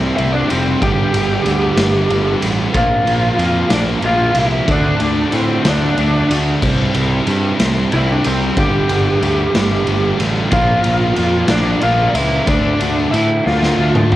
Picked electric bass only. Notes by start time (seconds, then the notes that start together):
Already playing: C2
0.18 C2
0.51 F1
0.82 G1
1.14 G1
1.46 D2
1.77 G1
2.10 G1
2.43 A1
2.75 A#1
3.06 A#1
3.38 F2
3.70 A#1
4.03 A#1
4.34 C2
4.68 D2
5.01 D2
5.33 A2
5.65 D2
5.98 D2
6.30 D2
6.62 C2
6.95 C2
7.27 G2
7.60 C2
7.93 C2
8.26 C2
8.57 G1
8.89 G1
9.22 D2
9.55 G1
9.87 G1
10.20 A1
10.52 A#1
10.86 A#1
11.18 F2
11.49 A#1
11.83 A#1
12.15 C#2
12.48 D2
12.81 D2
13.13 A2
13.46 D2
13.79 D2
14.11 D2